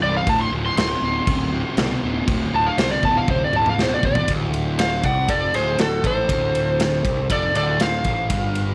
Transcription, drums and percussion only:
0, 0, Header, 1, 2, 480
1, 0, Start_track
1, 0, Tempo, 501672
1, 255, Time_signature, 4, 2, 24, 8
1, 8366, End_track
2, 0, Start_track
2, 0, Title_t, "Drums"
2, 256, Note_on_c, 9, 49, 60
2, 257, Note_on_c, 9, 36, 116
2, 352, Note_off_c, 9, 49, 0
2, 353, Note_off_c, 9, 36, 0
2, 739, Note_on_c, 9, 49, 69
2, 749, Note_on_c, 9, 38, 122
2, 834, Note_off_c, 9, 49, 0
2, 845, Note_off_c, 9, 38, 0
2, 1217, Note_on_c, 9, 36, 118
2, 1217, Note_on_c, 9, 49, 65
2, 1313, Note_off_c, 9, 36, 0
2, 1313, Note_off_c, 9, 49, 0
2, 1693, Note_on_c, 9, 49, 58
2, 1704, Note_on_c, 9, 38, 118
2, 1789, Note_off_c, 9, 49, 0
2, 1799, Note_off_c, 9, 38, 0
2, 2177, Note_on_c, 9, 49, 60
2, 2179, Note_on_c, 9, 36, 117
2, 2273, Note_off_c, 9, 49, 0
2, 2275, Note_off_c, 9, 36, 0
2, 2661, Note_on_c, 9, 49, 66
2, 2671, Note_on_c, 9, 38, 124
2, 2756, Note_off_c, 9, 49, 0
2, 2767, Note_off_c, 9, 38, 0
2, 2899, Note_on_c, 9, 36, 88
2, 2995, Note_off_c, 9, 36, 0
2, 3139, Note_on_c, 9, 36, 117
2, 3140, Note_on_c, 9, 48, 69
2, 3235, Note_off_c, 9, 36, 0
2, 3235, Note_off_c, 9, 48, 0
2, 3380, Note_on_c, 9, 47, 75
2, 3476, Note_off_c, 9, 47, 0
2, 3502, Note_on_c, 9, 47, 73
2, 3597, Note_off_c, 9, 47, 0
2, 3628, Note_on_c, 9, 38, 90
2, 3724, Note_off_c, 9, 38, 0
2, 3856, Note_on_c, 9, 36, 99
2, 3952, Note_off_c, 9, 36, 0
2, 3972, Note_on_c, 9, 43, 99
2, 4068, Note_off_c, 9, 43, 0
2, 4094, Note_on_c, 9, 51, 92
2, 4096, Note_on_c, 9, 36, 98
2, 4190, Note_off_c, 9, 51, 0
2, 4192, Note_off_c, 9, 36, 0
2, 4340, Note_on_c, 9, 51, 61
2, 4435, Note_off_c, 9, 51, 0
2, 4580, Note_on_c, 9, 51, 100
2, 4591, Note_on_c, 9, 38, 114
2, 4676, Note_off_c, 9, 51, 0
2, 4686, Note_off_c, 9, 38, 0
2, 4817, Note_on_c, 9, 51, 63
2, 4818, Note_on_c, 9, 36, 98
2, 4912, Note_off_c, 9, 51, 0
2, 4913, Note_off_c, 9, 36, 0
2, 5056, Note_on_c, 9, 51, 91
2, 5057, Note_on_c, 9, 36, 107
2, 5152, Note_off_c, 9, 51, 0
2, 5153, Note_off_c, 9, 36, 0
2, 5301, Note_on_c, 9, 51, 63
2, 5311, Note_on_c, 9, 38, 30
2, 5396, Note_off_c, 9, 51, 0
2, 5407, Note_off_c, 9, 38, 0
2, 5536, Note_on_c, 9, 51, 81
2, 5546, Note_on_c, 9, 38, 106
2, 5631, Note_off_c, 9, 51, 0
2, 5642, Note_off_c, 9, 38, 0
2, 5779, Note_on_c, 9, 36, 100
2, 5783, Note_on_c, 9, 51, 67
2, 5875, Note_off_c, 9, 36, 0
2, 5878, Note_off_c, 9, 51, 0
2, 6019, Note_on_c, 9, 36, 98
2, 6022, Note_on_c, 9, 51, 86
2, 6115, Note_off_c, 9, 36, 0
2, 6117, Note_off_c, 9, 51, 0
2, 6266, Note_on_c, 9, 51, 63
2, 6362, Note_off_c, 9, 51, 0
2, 6503, Note_on_c, 9, 51, 94
2, 6514, Note_on_c, 9, 38, 122
2, 6599, Note_off_c, 9, 51, 0
2, 6609, Note_off_c, 9, 38, 0
2, 6742, Note_on_c, 9, 36, 102
2, 6745, Note_on_c, 9, 51, 64
2, 6838, Note_off_c, 9, 36, 0
2, 6841, Note_off_c, 9, 51, 0
2, 6982, Note_on_c, 9, 36, 106
2, 6983, Note_on_c, 9, 51, 100
2, 7078, Note_off_c, 9, 36, 0
2, 7079, Note_off_c, 9, 51, 0
2, 7226, Note_on_c, 9, 51, 71
2, 7321, Note_off_c, 9, 51, 0
2, 7460, Note_on_c, 9, 51, 95
2, 7471, Note_on_c, 9, 38, 103
2, 7556, Note_off_c, 9, 51, 0
2, 7567, Note_off_c, 9, 38, 0
2, 7696, Note_on_c, 9, 51, 69
2, 7701, Note_on_c, 9, 36, 99
2, 7792, Note_off_c, 9, 51, 0
2, 7796, Note_off_c, 9, 36, 0
2, 7940, Note_on_c, 9, 51, 95
2, 7941, Note_on_c, 9, 36, 103
2, 8036, Note_off_c, 9, 36, 0
2, 8036, Note_off_c, 9, 51, 0
2, 8183, Note_on_c, 9, 51, 70
2, 8279, Note_off_c, 9, 51, 0
2, 8366, End_track
0, 0, End_of_file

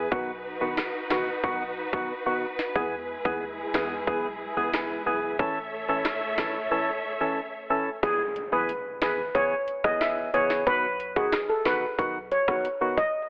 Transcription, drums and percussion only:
0, 0, Header, 1, 2, 480
1, 0, Start_track
1, 0, Key_signature, 4, "major"
1, 0, Tempo, 659341
1, 86, Time_signature, 4, 2, 24, 8
1, 9675, End_track
2, 0, Start_track
2, 0, Title_t, "Drums"
2, 86, Note_on_c, 9, 36, 106
2, 158, Note_off_c, 9, 36, 0
2, 563, Note_on_c, 9, 38, 113
2, 570, Note_on_c, 9, 37, 94
2, 636, Note_off_c, 9, 38, 0
2, 643, Note_off_c, 9, 37, 0
2, 804, Note_on_c, 9, 38, 117
2, 811, Note_on_c, 9, 37, 94
2, 877, Note_off_c, 9, 38, 0
2, 884, Note_off_c, 9, 37, 0
2, 1045, Note_on_c, 9, 36, 96
2, 1118, Note_off_c, 9, 36, 0
2, 1405, Note_on_c, 9, 36, 88
2, 1478, Note_off_c, 9, 36, 0
2, 1885, Note_on_c, 9, 38, 67
2, 1958, Note_off_c, 9, 38, 0
2, 2006, Note_on_c, 9, 36, 100
2, 2079, Note_off_c, 9, 36, 0
2, 2367, Note_on_c, 9, 36, 96
2, 2440, Note_off_c, 9, 36, 0
2, 2724, Note_on_c, 9, 38, 114
2, 2731, Note_on_c, 9, 37, 96
2, 2797, Note_off_c, 9, 38, 0
2, 2804, Note_off_c, 9, 37, 0
2, 2966, Note_on_c, 9, 36, 100
2, 3038, Note_off_c, 9, 36, 0
2, 3447, Note_on_c, 9, 38, 106
2, 3454, Note_on_c, 9, 37, 86
2, 3520, Note_off_c, 9, 38, 0
2, 3527, Note_off_c, 9, 37, 0
2, 3926, Note_on_c, 9, 36, 103
2, 3999, Note_off_c, 9, 36, 0
2, 4404, Note_on_c, 9, 38, 114
2, 4411, Note_on_c, 9, 37, 93
2, 4477, Note_off_c, 9, 38, 0
2, 4484, Note_off_c, 9, 37, 0
2, 4644, Note_on_c, 9, 38, 114
2, 4645, Note_on_c, 9, 36, 92
2, 4651, Note_on_c, 9, 37, 94
2, 4716, Note_off_c, 9, 38, 0
2, 4718, Note_off_c, 9, 36, 0
2, 4723, Note_off_c, 9, 37, 0
2, 5846, Note_on_c, 9, 36, 113
2, 5846, Note_on_c, 9, 42, 81
2, 5919, Note_off_c, 9, 36, 0
2, 5919, Note_off_c, 9, 42, 0
2, 6086, Note_on_c, 9, 42, 60
2, 6159, Note_off_c, 9, 42, 0
2, 6327, Note_on_c, 9, 42, 72
2, 6400, Note_off_c, 9, 42, 0
2, 6564, Note_on_c, 9, 38, 124
2, 6568, Note_on_c, 9, 42, 51
2, 6571, Note_on_c, 9, 37, 96
2, 6637, Note_off_c, 9, 38, 0
2, 6641, Note_off_c, 9, 42, 0
2, 6644, Note_off_c, 9, 37, 0
2, 6806, Note_on_c, 9, 36, 100
2, 6807, Note_on_c, 9, 42, 70
2, 6879, Note_off_c, 9, 36, 0
2, 6880, Note_off_c, 9, 42, 0
2, 7045, Note_on_c, 9, 42, 55
2, 7118, Note_off_c, 9, 42, 0
2, 7165, Note_on_c, 9, 36, 90
2, 7166, Note_on_c, 9, 37, 102
2, 7238, Note_off_c, 9, 36, 0
2, 7239, Note_off_c, 9, 37, 0
2, 7287, Note_on_c, 9, 38, 108
2, 7287, Note_on_c, 9, 42, 69
2, 7294, Note_on_c, 9, 37, 91
2, 7359, Note_off_c, 9, 38, 0
2, 7360, Note_off_c, 9, 42, 0
2, 7366, Note_off_c, 9, 37, 0
2, 7528, Note_on_c, 9, 42, 57
2, 7600, Note_off_c, 9, 42, 0
2, 7645, Note_on_c, 9, 38, 69
2, 7718, Note_off_c, 9, 38, 0
2, 7766, Note_on_c, 9, 36, 113
2, 7766, Note_on_c, 9, 42, 80
2, 7839, Note_off_c, 9, 36, 0
2, 7839, Note_off_c, 9, 42, 0
2, 8007, Note_on_c, 9, 42, 62
2, 8080, Note_off_c, 9, 42, 0
2, 8127, Note_on_c, 9, 36, 106
2, 8200, Note_off_c, 9, 36, 0
2, 8244, Note_on_c, 9, 38, 120
2, 8247, Note_on_c, 9, 42, 78
2, 8251, Note_on_c, 9, 37, 91
2, 8317, Note_off_c, 9, 38, 0
2, 8320, Note_off_c, 9, 42, 0
2, 8324, Note_off_c, 9, 37, 0
2, 8484, Note_on_c, 9, 38, 124
2, 8488, Note_on_c, 9, 42, 51
2, 8491, Note_on_c, 9, 37, 102
2, 8557, Note_off_c, 9, 38, 0
2, 8561, Note_off_c, 9, 42, 0
2, 8564, Note_off_c, 9, 37, 0
2, 8726, Note_on_c, 9, 36, 101
2, 8728, Note_on_c, 9, 42, 69
2, 8799, Note_off_c, 9, 36, 0
2, 8800, Note_off_c, 9, 42, 0
2, 8965, Note_on_c, 9, 42, 59
2, 9038, Note_off_c, 9, 42, 0
2, 9085, Note_on_c, 9, 36, 92
2, 9086, Note_on_c, 9, 37, 96
2, 9158, Note_off_c, 9, 36, 0
2, 9159, Note_off_c, 9, 37, 0
2, 9208, Note_on_c, 9, 42, 73
2, 9281, Note_off_c, 9, 42, 0
2, 9446, Note_on_c, 9, 36, 91
2, 9447, Note_on_c, 9, 42, 57
2, 9519, Note_off_c, 9, 36, 0
2, 9520, Note_off_c, 9, 42, 0
2, 9675, End_track
0, 0, End_of_file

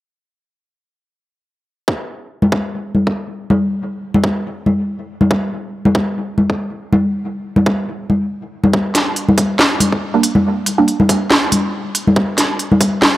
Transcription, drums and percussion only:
0, 0, Header, 1, 2, 480
1, 0, Start_track
1, 0, Key_signature, -2, "minor"
1, 0, Tempo, 428571
1, 2106, Time_signature, 4, 2, 24, 8
1, 14753, End_track
2, 0, Start_track
2, 0, Title_t, "Drums"
2, 2104, Note_on_c, 9, 36, 101
2, 2216, Note_off_c, 9, 36, 0
2, 2712, Note_on_c, 9, 63, 77
2, 2824, Note_off_c, 9, 63, 0
2, 2824, Note_on_c, 9, 36, 90
2, 2936, Note_off_c, 9, 36, 0
2, 3300, Note_on_c, 9, 63, 54
2, 3412, Note_off_c, 9, 63, 0
2, 3438, Note_on_c, 9, 36, 50
2, 3550, Note_off_c, 9, 36, 0
2, 3922, Note_on_c, 9, 63, 88
2, 4034, Note_off_c, 9, 63, 0
2, 4642, Note_on_c, 9, 63, 88
2, 4744, Note_on_c, 9, 36, 98
2, 4754, Note_off_c, 9, 63, 0
2, 4856, Note_off_c, 9, 36, 0
2, 5222, Note_on_c, 9, 63, 67
2, 5334, Note_off_c, 9, 63, 0
2, 5833, Note_on_c, 9, 63, 84
2, 5944, Note_on_c, 9, 36, 109
2, 5945, Note_off_c, 9, 63, 0
2, 6056, Note_off_c, 9, 36, 0
2, 6556, Note_on_c, 9, 63, 89
2, 6663, Note_on_c, 9, 36, 105
2, 6668, Note_off_c, 9, 63, 0
2, 6775, Note_off_c, 9, 36, 0
2, 7142, Note_on_c, 9, 63, 60
2, 7254, Note_off_c, 9, 63, 0
2, 7276, Note_on_c, 9, 36, 53
2, 7388, Note_off_c, 9, 36, 0
2, 7757, Note_on_c, 9, 63, 95
2, 7869, Note_off_c, 9, 63, 0
2, 8470, Note_on_c, 9, 63, 86
2, 8582, Note_off_c, 9, 63, 0
2, 8583, Note_on_c, 9, 36, 98
2, 8695, Note_off_c, 9, 36, 0
2, 9069, Note_on_c, 9, 63, 62
2, 9181, Note_off_c, 9, 63, 0
2, 9672, Note_on_c, 9, 63, 88
2, 9783, Note_on_c, 9, 36, 104
2, 9784, Note_off_c, 9, 63, 0
2, 9895, Note_off_c, 9, 36, 0
2, 10023, Note_on_c, 9, 38, 55
2, 10023, Note_on_c, 9, 42, 65
2, 10135, Note_off_c, 9, 38, 0
2, 10135, Note_off_c, 9, 42, 0
2, 10262, Note_on_c, 9, 42, 33
2, 10374, Note_off_c, 9, 42, 0
2, 10400, Note_on_c, 9, 63, 84
2, 10502, Note_on_c, 9, 42, 68
2, 10503, Note_on_c, 9, 36, 98
2, 10512, Note_off_c, 9, 63, 0
2, 10614, Note_off_c, 9, 42, 0
2, 10615, Note_off_c, 9, 36, 0
2, 10742, Note_on_c, 9, 38, 111
2, 10854, Note_off_c, 9, 38, 0
2, 10979, Note_on_c, 9, 63, 58
2, 10981, Note_on_c, 9, 42, 71
2, 11091, Note_off_c, 9, 63, 0
2, 11093, Note_off_c, 9, 42, 0
2, 11116, Note_on_c, 9, 36, 53
2, 11228, Note_off_c, 9, 36, 0
2, 11461, Note_on_c, 9, 42, 68
2, 11573, Note_off_c, 9, 42, 0
2, 11593, Note_on_c, 9, 63, 87
2, 11705, Note_off_c, 9, 63, 0
2, 11943, Note_on_c, 9, 42, 71
2, 12055, Note_off_c, 9, 42, 0
2, 12184, Note_on_c, 9, 42, 32
2, 12296, Note_off_c, 9, 42, 0
2, 12318, Note_on_c, 9, 63, 86
2, 12423, Note_on_c, 9, 36, 93
2, 12423, Note_on_c, 9, 42, 68
2, 12430, Note_off_c, 9, 63, 0
2, 12535, Note_off_c, 9, 36, 0
2, 12535, Note_off_c, 9, 42, 0
2, 12662, Note_on_c, 9, 38, 103
2, 12774, Note_off_c, 9, 38, 0
2, 12902, Note_on_c, 9, 42, 68
2, 12903, Note_on_c, 9, 63, 53
2, 13014, Note_off_c, 9, 42, 0
2, 13015, Note_off_c, 9, 63, 0
2, 13382, Note_on_c, 9, 42, 71
2, 13494, Note_off_c, 9, 42, 0
2, 13523, Note_on_c, 9, 63, 81
2, 13622, Note_on_c, 9, 36, 105
2, 13635, Note_off_c, 9, 63, 0
2, 13734, Note_off_c, 9, 36, 0
2, 13863, Note_on_c, 9, 38, 53
2, 13863, Note_on_c, 9, 42, 70
2, 13975, Note_off_c, 9, 38, 0
2, 13975, Note_off_c, 9, 42, 0
2, 14105, Note_on_c, 9, 42, 33
2, 14217, Note_off_c, 9, 42, 0
2, 14242, Note_on_c, 9, 63, 85
2, 14342, Note_on_c, 9, 42, 70
2, 14343, Note_on_c, 9, 36, 95
2, 14354, Note_off_c, 9, 63, 0
2, 14454, Note_off_c, 9, 42, 0
2, 14455, Note_off_c, 9, 36, 0
2, 14582, Note_on_c, 9, 38, 101
2, 14694, Note_off_c, 9, 38, 0
2, 14753, End_track
0, 0, End_of_file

